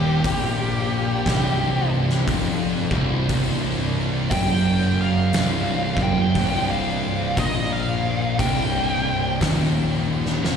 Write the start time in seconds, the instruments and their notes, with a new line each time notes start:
Already playing: picked electric bass D#1, distorted electric guitar D#2, lead electric guitar G4
0.24 picked electric bass A#1, distorted electric guitar A#2, kick, open hi-hat
1.26 picked electric bass C1, distorted electric guitar C2, kick, snare, open hi-hat
2.10 snare
2.27 picked electric bass F1, distorted electric guitar F2, kick, open hi-hat
2.90 picked electric bass C1, distorted electric guitar C2, kick
3.29 picked electric bass C1, distorted electric guitar C2, kick, open hi-hat
4.31 picked electric bass F#1, distorted electric guitar F#2, lead electric guitar G5, kick, open hi-hat
5.01 lead electric guitar F5
5.33 picked electric bass C1, distorted electric guitar C2, snare, open hi-hat
5.96 picked electric bass F#1, distorted electric guitar F#2, kick
6.03 lead electric guitar G5
6.35 picked electric bass C1, distorted electric guitar C2, kick, open hi-hat
6.70 lead electric guitar F5
7.37 picked electric bass A#1, distorted electric guitar A#2, lead electric guitar D#5, kick, open hi-hat
7.73 lead electric guitar F5
8.39 picked electric bass C1, distorted electric guitar C2, lead electric guitar G5, kick, open hi-hat
9.41 picked electric bass D#1, distorted electric guitar D#2, kick, snare, open hi-hat
10.26 snare
10.43 picked electric bass F1, distorted electric guitar F2, snare